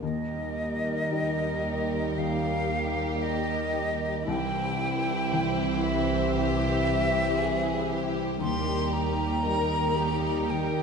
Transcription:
0.02 1.08 D#2 medium
0.02 4.24 D#2 medium
0.02 2.16 D#3 medium
0.02 4.24 G3 medium
0.02 4.24 D#4 medium
0.02 4.23 G4 medium
0.02 4.23 A#4 medium
0.02 2.20 D#5 medium
0.29 4.19 A#3 soft
0.57 1.64 D#4 soft
0.84 1.37 A#4 soft
1.11 4.23 G3 soft
1.11 4.24 D#4 soft
1.11 4.24 G4 soft
1.11 5.01 G5 soft
1.38 2.95 A#4 soft
1.65 2.42 D#4 soft
2.17 4.31 D#3 medium
2.17 4.24 G4 medium
2.17 3.24 F5 medium
2.43 3.74 D#4 soft
2.96 3.47 A#4 soft
3.22 4.27 D#5 medium
3.49 4.31 A#4 medium
3.75 4.31 D#4 soft
4.27 8.41 C2 medium
4.27 5.29 C2 medium
4.27 6.34 C3 medium
4.27 8.37 E3 medium
4.27 6.31 E4 medium
4.27 8.37 E4 medium
4.27 8.37 G4 medium
4.27 8.41 C5 medium
4.27 5.85 G5 loud
4.54 6.09 C4 medium
5.06 5.57 E4 medium
5.33 8.37 E3 soft
5.33 8.37 E4 soft
5.33 7.37 C5 medium
5.33 8.38 G5 medium
5.58 7.11 E4 medium
5.83 6.35 E5 medium
6.10 6.85 C4 medium
6.35 8.45 C3 medium
6.35 7.38 G4 medium
6.35 8.10 E5 loud
6.86 8.13 C4 medium
7.12 7.62 E4 medium
7.38 7.89 G#4 medium
7.38 8.45 C5 medium
7.63 8.45 E4 medium
7.88 8.65 G3 soft
7.88 8.40 G4 medium
8.14 8.44 C4 medium
8.40 10.83 D#2 medium
8.40 9.42 D#2 medium
8.40 10.48 D#3 medium
8.40 10.83 G3 medium
8.40 10.83 D#4 medium
8.40 10.83 G4 medium
8.40 9.43 G4 medium
8.40 10.83 A#4 medium
8.40 8.94 C6 loud
8.66 10.21 G3 soft
8.91 9.95 D#4 soft
8.91 10.52 A#5 loud
9.17 9.69 A#4 medium
9.44 10.83 G3 soft
9.44 10.83 D#4 soft
9.44 10.83 G4 soft
9.44 9.96 A#4 medium
9.70 10.83 A#4 soft
9.96 10.75 D#4 soft
9.96 10.49 G4 medium
10.22 10.83 G3 soft
10.49 10.83 D#3 soft
10.49 10.83 A#4 medium
10.49 10.83 G5 medium
10.77 10.83 D#4 soft

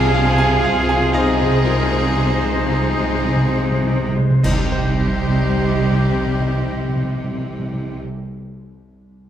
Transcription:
0.00 4.12 C2 loud
0.00 4.41 C2 loud
0.00 2.16 C3 medium
0.00 4.12 C3 loud
0.00 3.94 F3 loud
0.00 1.91 G#3 medium
0.00 0.63 C4 medium
0.00 0.17 D#4 loud
0.00 1.15 F4 loud
0.00 1.65 F4 medium
0.00 3.94 F4 loud
0.00 0.17 G#4 loud
0.00 1.16 G#4 loud
0.00 1.40 G#4 loud
0.00 3.94 G#4 loud
0.00 0.14 F5 loud
0.00 1.12 F5 loud
0.00 0.38 G#5 loud
0.00 1.15 G#5 loud
0.14 0.23 C3 medium
0.14 0.65 D4 loud
0.14 0.66 G4 loud
0.14 0.54 F5 loud
0.34 0.43 C3 medium
0.34 0.79 G#5 loud
0.53 0.61 C3 medium
0.64 2.66 C4 loud
0.64 1.16 F4 loud
0.64 1.04 F5 loud
0.73 0.81 C3 medium
0.82 0.91 C3 medium
0.89 1.01 C3 medium
0.89 1.29 G#5 loud
1.02 1.10 C3 medium
1.13 4.29 D#4 loud
1.13 4.40 D#4 medium
1.13 2.67 G#4 loud
1.13 1.65 G#4 loud
1.13 4.44 C5 loud
1.13 4.26 D#5 loud
1.13 4.40 D#5 loud
1.13 1.54 F5 loud
1.22 1.30 C3 medium
1.31 1.40 C3 medium
1.40 1.50 C3 medium
1.40 1.80 G#4 medium
1.51 1.61 C3 medium
1.62 1.72 C3 medium
1.62 2.05 F4 medium
1.62 2.16 A#4 loud
1.73 1.80 C3 medium
1.82 1.91 C3 loud
1.91 2.01 C3 medium
1.91 2.32 G#3 medium
2.03 2.11 C3 medium
2.12 2.21 C3 loud
2.16 2.59 C3 medium
2.16 2.69 C5 medium
2.23 2.32 C3 loud
2.33 2.43 C3 loud
2.43 2.54 C3 medium
2.43 2.87 G#3 medium
2.55 2.63 C3 loud
2.65 2.75 C3 loud
2.65 3.15 C3 medium
2.65 4.12 C4 medium
2.65 4.13 G#4 medium
2.71 3.58 G#4 loud
2.76 2.87 C3 loud
2.88 2.99 C3 loud
2.99 3.10 C3 loud
2.99 3.46 G#3 medium
3.11 3.22 C3 loud
3.23 3.35 C3 loud
3.28 3.76 C3 medium
3.36 3.46 C3 loud
3.47 3.57 C3 loud
3.55 3.69 C3 loud
3.55 4.05 G#3 medium
3.70 3.82 C3 loud
3.83 3.95 C3 loud
3.83 4.34 C3 medium
3.96 4.07 C3 loud
4.08 4.18 C3 loud
4.16 4.29 C3 loud
4.16 4.44 G#3 medium
4.30 4.40 C3 loud
4.43 8.01 C2 loud
4.43 8.01 C2 medium
4.43 8.01 C3 loud
4.43 4.51 C3 loud
4.43 8.02 G3 loud
4.43 8.03 G3 loud
4.43 8.01 C4 medium
4.43 8.01 D#4 medium
4.43 8.03 D#4 medium
4.43 8.01 G4 medium
4.43 8.02 G4 medium
4.43 8.04 G4 loud
4.43 8.00 C5 loud
4.43 4.71 C5 medium
4.43 8.01 D#5 loud
4.43 concert bass drum medium
4.43 crash medium
4.51 4.58 C3 medium
4.51 8.08 C3 medium
4.58 4.65 C3 medium
4.58 8.15 G3 medium
4.65 4.72 C3 medium
4.65 8.22 G4 medium
4.72 4.79 C3 loud
4.72 8.29 C5 medium
4.79 4.87 C3 medium
4.79 8.36 G5 medium
4.87 4.94 C3 medium
4.94 5.00 C3 loud
5.00 5.07 C3 medium
5.07 5.14 C3 medium
5.14 5.21 C3 loud
5.21 5.28 C3 medium
5.28 5.35 C3 loud
5.35 5.42 C3 medium
5.42 5.49 C3 medium
5.49 5.55 C3 medium
5.55 5.62 C3 loud
5.62 5.69 C3 medium
5.70 5.77 C3 loud
5.77 5.84 C3 medium
5.85 5.91 C3 loud
5.91 5.98 C3 medium
5.98 6.05 C3 loud
6.05 6.12 C3 medium
6.12 6.19 C3 loud
6.19 6.26 C3 medium
6.26 6.33 C3 medium
6.33 6.40 C3 medium
6.40 6.47 C3 loud
6.47 6.54 C3 medium
6.55 6.62 C3 loud
6.62 6.69 C3 medium
6.69 6.76 C3 loud
6.76 6.83 C3 medium
6.83 6.89 C3 loud
6.89 6.96 C3 loud
6.96 7.03 C3 loud
7.03 7.10 C3 medium
7.10 7.17 C3 medium
7.17 7.24 C3 medium
7.24 7.31 C3 loud
7.31 7.38 C3 medium
7.38 7.45 C3 loud
7.46 7.52 C3 medium
7.52 7.59 C3 loud
7.59 7.66 C3 loud
7.66 7.73 C3 loud
7.74 7.80 C3 medium
7.80 7.87 C3 medium
7.87 7.93 C3 medium
7.93 8.00 C3 medium

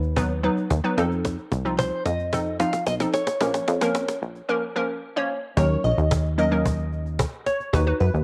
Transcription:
0.00 0.49 D#2 medium
0.00 0.40 B4 medium
0.00 cajon slap soft
0.16 0.31 F#3 medium
0.16 0.31 B3 medium
0.16 0.31 D#4 medium
0.16 0.31 B4 loud
0.16 cajon bass loud
0.16 cajon slap medium
0.30 cajon slap soft
0.43 0.65 F#3 medium
0.43 0.65 B3 medium
0.43 0.65 D#4 medium
0.43 0.65 B4 loud
0.57 cajon slap soft
0.70 0.80 D#2 loud
0.70 cajon bass loud
0.70 cajon slap medium
0.84 0.98 F#3 medium
0.84 0.98 B3 medium
0.84 0.97 D#4 medium
0.84 0.98 B4 loud
0.84 cajon slap soft
0.97 1.37 F2 loud
0.97 1.52 F3 medium
0.97 1.52 C4 medium
0.97 1.52 D#4 medium
0.97 1.52 A4 loud
0.97 cajon slap medium
1.11 cajon slap soft
1.25 cajon bass loud
1.25 cajon slap medium
1.38 cajon slap soft
1.52 1.91 C2 loud
1.52 cajon slap medium
1.65 2.01 F3 medium
1.65 2.01 C4 medium
1.65 2.01 D#4 medium
1.65 2.01 F4 medium
1.65 cajon slap soft
1.79 2.04 C5 medium
1.79 cajon bass loud
1.79 cajon slap medium
1.92 cajon slap soft
2.06 2.65 F2 medium
2.06 2.56 D#5 loud
2.06 cajon slap loud
2.19 cajon slap soft
2.33 2.47 F3 medium
2.33 2.47 C4 medium
2.33 2.47 D#4 medium
2.33 2.47 A4 medium
2.33 cajon bass loud
2.33 cajon slap loud
2.46 cajon slap soft
2.59 2.81 F3 medium
2.59 2.81 C4 medium
2.59 2.81 D#4 medium
2.59 2.81 F4 medium
2.59 2.85 F5 loud
2.59 cajon slap loud
2.73 cajon slap loud
2.87 3.06 B1 loud
2.87 2.94 D#5 loud
2.87 cajon bass loud
2.87 cajon slap loud
3.00 3.22 F3 medium
3.00 3.22 C4 medium
3.00 3.22 D#4 medium
3.00 3.22 A4 medium
3.00 cajon slap loud
3.14 4.18 C#5 medium
3.14 cajon slap loud
3.27 cajon slap loud
3.41 3.61 A#1 loud
3.41 3.62 F3 medium
3.41 3.62 A#3 medium
3.41 3.62 C#4 medium
3.41 3.62 A#4 medium
3.41 cajon bass loud
3.41 cajon slap loud
3.54 cajon slap loud
3.68 4.07 F2 loud
3.68 cajon slap loud
3.81 4.17 F3 medium
3.81 4.17 A#3 medium
3.81 4.17 C#4 medium
3.81 4.17 A#4 loud
3.81 cajon slap loud
3.95 cajon slap loud
4.08 cajon slap loud
4.22 4.42 A#1 loud
4.22 cajon slap soft
4.35 cajon slap soft
4.49 4.63 F3 medium
4.49 4.63 A#3 medium
4.49 4.63 C#4 medium
4.49 4.63 A#4 loud
4.76 4.97 F3 medium
4.76 4.97 A#3 medium
4.76 4.97 C#4 medium
4.76 4.97 A#4 loud
5.16 5.38 F3 medium
5.16 5.38 A#3 medium
5.16 5.38 C#4 medium
5.16 5.38 C#5 loud
5.57 5.77 D#2 loud
5.57 5.99 F#3 medium
5.57 6.00 A#3 medium
5.57 6.00 C#4 medium
5.57 6.00 D#4 medium
5.57 6.00 A#4 medium
5.57 5.79 C#5 loud
5.57 cajon bass loud
5.84 5.94 A#1 medium
5.84 6.06 D#5 medium
5.84 cajon slap soft
5.98 7.26 D#2 medium
5.98 cajon slap soft
6.11 cajon bass loud
6.11 cajon slap loud
6.25 cajon slap soft
6.38 6.45 F#3 medium
6.38 6.45 A#3 medium
6.38 6.45 C#4 medium
6.38 6.45 D#4 medium
6.38 6.45 A#4 medium
6.38 6.89 D#5 medium
6.38 cajon slap soft
6.51 7.08 F#3 medium
6.51 7.08 A#3 medium
6.51 7.08 C#4 medium
6.51 7.08 D#4 medium
6.51 7.09 A#4 medium
6.51 cajon slap soft
6.65 cajon bass loud
6.79 cajon slap soft
6.92 cajon slap soft
7.06 cajon slap soft
7.19 cajon bass loud
7.19 cajon slap loud
7.33 cajon slap soft
7.46 7.57 C#5 medium
7.46 cajon slap medium
7.60 cajon slap soft
7.73 7.93 D#2 loud
7.73 7.80 D#4 medium
7.73 7.80 F#4 medium
7.73 7.81 B4 loud
7.73 cajon bass loud
7.87 8.22 D#4 medium
7.87 8.22 F#4 medium
7.87 8.22 B4 medium
7.87 cajon slap soft
8.00 8.10 F#2 medium
8.00 8.11 B4 medium
8.00 cajon slap soft
8.14 8.24 D#2 medium
8.14 cajon slap soft

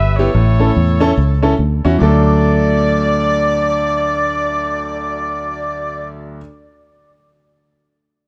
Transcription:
0.00 0.28 G1 loud
0.00 0.30 G4 medium
0.00 0.30 B4 medium
0.00 0.16 E5 loud
0.16 0.28 B3 medium
0.16 1.56 E4 medium
0.16 0.28 E4 medium
0.16 0.28 G4 medium
0.16 1.55 A4 medium
0.16 1.58 C#5 loud
0.34 0.70 A1 loud
0.34 0.97 A2 medium
0.60 0.69 C#4 medium
0.60 0.69 E4 medium
0.60 0.69 A4 medium
0.76 1.11 E2 medium
1.00 1.10 C#4 medium
1.00 1.11 E4 medium
1.00 1.11 A4 loud
1.17 1.53 C#2 loud
1.43 1.52 C#4 medium
1.43 1.53 E4 medium
1.43 1.53 A4 medium
1.59 1.81 D2 medium
1.85 1.99 E2 medium
1.85 1.94 C#4 medium
1.85 1.94 E4 medium
1.85 1.95 F#4 medium
1.99 6.38 D2 medium
1.99 6.36 F#3 medium
1.99 6.37 A3 medium
1.99 6.39 D4 medium
1.99 6.11 D5 loud
2.03 6.40 A4 medium

